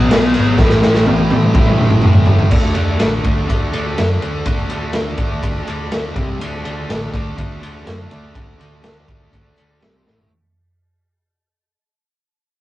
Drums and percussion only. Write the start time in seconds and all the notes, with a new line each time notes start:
0.11 snare, crash
0.34 crash
0.58 kick, snare
0.69 snare
0.82 snare
0.94 snare
1.06 high tom
1.18 high tom
1.31 high tom
1.43 mid tom
1.54 kick, mid tom
1.66 mid tom
1.78 mid tom
1.90 mid tom
2.02 mid tom
2.14 floor tom
2.26 floor tom
2.39 floor tom
2.51 kick, crash
2.75 ride
3.00 snare, ride
3.24 kick, ride
3.49 kick, ride
3.73 ride
3.98 snare, ride
4.22 ride
4.45 kick, ride
4.70 ride
4.93 snare, ride
5.18 kick, ride
5.43 kick, ride
5.67 ride
5.92 snare, ride
6.16 kick, ride
6.41 ride
6.65 ride
6.90 snare, ride
7.14 kick, ride
7.38 kick, ride
7.63 ride
7.87 snare, ride
8.11 ride
8.35 kick, ride
8.61 ride
8.84 snare, ride
9.08 kick, ride
9.33 kick, ride
9.58 ride
9.82 snare, ride
10.07 snare
10.18 floor tom